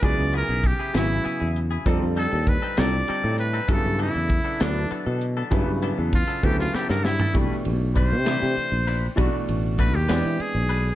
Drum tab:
RD |------------|------------|------------|------------|
HH |x-x-x-x-x-x-|x-x-x-x-x-x-|x-x-x-x-x-x-|x-x-x-------|
SD |------o-----|------o-----|------o-----|-------oooo-|
FT |------------|------------|------------|-----------o|
BD |o---o-------|o---o-------|o---o-------|o---o-o-----|

RD |x-x-x-x-x-x-|x-x-x-x-x-x-|
HH |------------|------------|
SD |------o-----|------o-----|
FT |------------|------------|
BD |o---o-------|o---o-------|